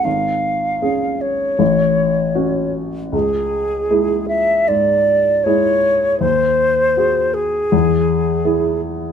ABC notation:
X:1
M:4/4
L:1/8
Q:1/4=79
K:C#phr
V:1 name="Flute"
^e3 c4 z | G3 e d2 c2 | ^B3 G4 z |]
V:2 name="Grand piano"
G,,,2 [CG]2 A,,,2 [CF]2 | C,,2 [G,EG]2 G,,2 [G,EG]2 | ^D,,2 [FG]2 E,,2 [EG]2 |]